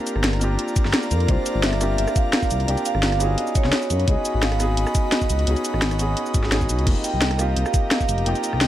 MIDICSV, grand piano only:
0, 0, Header, 1, 2, 480
1, 0, Start_track
1, 0, Tempo, 348837
1, 1770, Time_signature, 4, 2, 24, 8
1, 11935, End_track
2, 0, Start_track
2, 0, Title_t, "Grand piano"
2, 0, Program_c, 0, 0
2, 0, Note_on_c, 0, 58, 74
2, 0, Note_on_c, 0, 60, 65
2, 0, Note_on_c, 0, 62, 69
2, 0, Note_on_c, 0, 65, 68
2, 0, Note_on_c, 0, 67, 80
2, 123, Control_c, 0, 64, 127
2, 522, Note_off_c, 0, 58, 0
2, 535, Note_off_c, 0, 60, 0
2, 542, Note_off_c, 0, 62, 0
2, 542, Note_on_c, 0, 58, 84
2, 549, Note_off_c, 0, 65, 0
2, 556, Note_on_c, 0, 60, 74
2, 557, Note_off_c, 0, 67, 0
2, 572, Note_on_c, 0, 62, 76
2, 585, Note_on_c, 0, 65, 76
2, 601, Note_on_c, 0, 67, 94
2, 1721, Note_off_c, 0, 58, 0
2, 1736, Note_off_c, 0, 60, 0
2, 1742, Note_on_c, 0, 58, 72
2, 1744, Note_off_c, 0, 62, 0
2, 1750, Note_off_c, 0, 65, 0
2, 1756, Note_on_c, 0, 60, 65
2, 1758, Note_off_c, 0, 67, 0
2, 1771, Note_on_c, 0, 62, 68
2, 1786, Note_on_c, 0, 65, 69
2, 1801, Note_on_c, 0, 67, 78
2, 2439, Note_off_c, 0, 58, 0
2, 2453, Note_off_c, 0, 60, 0
2, 2459, Note_on_c, 0, 58, 85
2, 2464, Note_off_c, 0, 62, 0
2, 2471, Note_off_c, 0, 65, 0
2, 2474, Note_on_c, 0, 60, 76
2, 2478, Note_off_c, 0, 67, 0
2, 2489, Note_on_c, 0, 62, 75
2, 2503, Note_on_c, 0, 65, 78
2, 2518, Note_on_c, 0, 67, 92
2, 3641, Note_off_c, 0, 58, 0
2, 3654, Note_off_c, 0, 60, 0
2, 3661, Note_on_c, 0, 58, 73
2, 3662, Note_off_c, 0, 62, 0
2, 3669, Note_off_c, 0, 65, 0
2, 3675, Note_on_c, 0, 60, 68
2, 3677, Note_off_c, 0, 67, 0
2, 3690, Note_on_c, 0, 62, 69
2, 3705, Note_on_c, 0, 65, 68
2, 3718, Note_on_c, 0, 67, 80
2, 4369, Note_off_c, 0, 58, 0
2, 4375, Note_off_c, 0, 60, 0
2, 4381, Note_on_c, 0, 59, 83
2, 4383, Note_off_c, 0, 62, 0
2, 4390, Note_off_c, 0, 65, 0
2, 4395, Note_on_c, 0, 61, 78
2, 4397, Note_off_c, 0, 67, 0
2, 4408, Note_on_c, 0, 63, 76
2, 4423, Note_on_c, 0, 66, 77
2, 4438, Note_on_c, 0, 68, 91
2, 4667, Control_c, 0, 64, 0
2, 4887, Control_c, 0, 64, 127
2, 5562, Note_off_c, 0, 59, 0
2, 5575, Note_off_c, 0, 61, 0
2, 5582, Note_off_c, 0, 63, 0
2, 5583, Note_on_c, 0, 59, 75
2, 5589, Note_off_c, 0, 66, 0
2, 5597, Note_off_c, 0, 68, 0
2, 5597, Note_on_c, 0, 61, 69
2, 5611, Note_on_c, 0, 63, 68
2, 5625, Note_on_c, 0, 66, 69
2, 5641, Note_on_c, 0, 68, 80
2, 6283, Note_off_c, 0, 59, 0
2, 6296, Note_off_c, 0, 61, 0
2, 6303, Note_off_c, 0, 63, 0
2, 6303, Note_on_c, 0, 59, 86
2, 6311, Note_off_c, 0, 66, 0
2, 6318, Note_off_c, 0, 68, 0
2, 6318, Note_on_c, 0, 61, 77
2, 6331, Note_on_c, 0, 63, 77
2, 6346, Note_on_c, 0, 66, 76
2, 6361, Note_on_c, 0, 68, 95
2, 7483, Note_off_c, 0, 59, 0
2, 7497, Note_off_c, 0, 61, 0
2, 7503, Note_off_c, 0, 63, 0
2, 7503, Note_on_c, 0, 59, 75
2, 7511, Note_off_c, 0, 66, 0
2, 7518, Note_on_c, 0, 61, 69
2, 7519, Note_off_c, 0, 68, 0
2, 7532, Note_on_c, 0, 63, 70
2, 7548, Note_on_c, 0, 66, 67
2, 7561, Note_on_c, 0, 68, 80
2, 8202, Note_off_c, 0, 59, 0
2, 8217, Note_off_c, 0, 61, 0
2, 8222, Note_on_c, 0, 59, 84
2, 8224, Note_off_c, 0, 63, 0
2, 8232, Note_off_c, 0, 66, 0
2, 8237, Note_on_c, 0, 61, 79
2, 8239, Note_off_c, 0, 68, 0
2, 8251, Note_on_c, 0, 63, 77
2, 8266, Note_on_c, 0, 66, 76
2, 8279, Note_on_c, 0, 68, 88
2, 8818, Note_off_c, 0, 59, 0
2, 8826, Note_off_c, 0, 61, 0
2, 8832, Note_off_c, 0, 63, 0
2, 8840, Note_off_c, 0, 66, 0
2, 8845, Note_on_c, 0, 59, 78
2, 8847, Note_off_c, 0, 68, 0
2, 8852, Note_on_c, 0, 61, 74
2, 8859, Note_on_c, 0, 63, 74
2, 8866, Note_on_c, 0, 66, 75
2, 8873, Note_on_c, 0, 68, 87
2, 8935, Note_off_c, 0, 59, 0
2, 8940, Note_off_c, 0, 61, 0
2, 8944, Note_off_c, 0, 63, 0
2, 8947, Note_off_c, 0, 66, 0
2, 8951, Note_off_c, 0, 68, 0
2, 8956, Note_on_c, 0, 59, 87
2, 8961, Note_on_c, 0, 61, 84
2, 8969, Note_on_c, 0, 63, 81
2, 8977, Note_on_c, 0, 66, 82
2, 8984, Note_on_c, 0, 68, 101
2, 9416, Note_off_c, 0, 59, 0
2, 9419, Note_off_c, 0, 61, 0
2, 9422, Note_off_c, 0, 63, 0
2, 9423, Note_on_c, 0, 58, 76
2, 9427, Note_off_c, 0, 66, 0
2, 9430, Note_off_c, 0, 68, 0
2, 9438, Note_on_c, 0, 60, 70
2, 9452, Note_on_c, 0, 63, 67
2, 9468, Note_on_c, 0, 65, 65
2, 9470, Control_c, 0, 64, 0
2, 9482, Note_on_c, 0, 67, 80
2, 9710, Control_c, 0, 64, 127
2, 10121, Note_off_c, 0, 58, 0
2, 10136, Note_off_c, 0, 60, 0
2, 10142, Note_on_c, 0, 58, 84
2, 10144, Note_off_c, 0, 63, 0
2, 10152, Note_off_c, 0, 65, 0
2, 10157, Note_on_c, 0, 60, 79
2, 10159, Note_off_c, 0, 67, 0
2, 10172, Note_on_c, 0, 63, 77
2, 10185, Note_on_c, 0, 65, 77
2, 10200, Note_on_c, 0, 67, 92
2, 11320, Note_off_c, 0, 58, 0
2, 11335, Note_off_c, 0, 60, 0
2, 11341, Note_on_c, 0, 58, 71
2, 11344, Note_off_c, 0, 63, 0
2, 11351, Note_off_c, 0, 65, 0
2, 11355, Note_on_c, 0, 60, 71
2, 11358, Note_off_c, 0, 67, 0
2, 11370, Note_on_c, 0, 63, 70
2, 11384, Note_on_c, 0, 65, 69
2, 11399, Note_on_c, 0, 67, 84
2, 11935, Note_off_c, 0, 58, 0
2, 11935, Note_off_c, 0, 60, 0
2, 11935, Note_off_c, 0, 63, 0
2, 11935, Note_off_c, 0, 65, 0
2, 11935, Note_off_c, 0, 67, 0
2, 11935, End_track
0, 0, End_of_file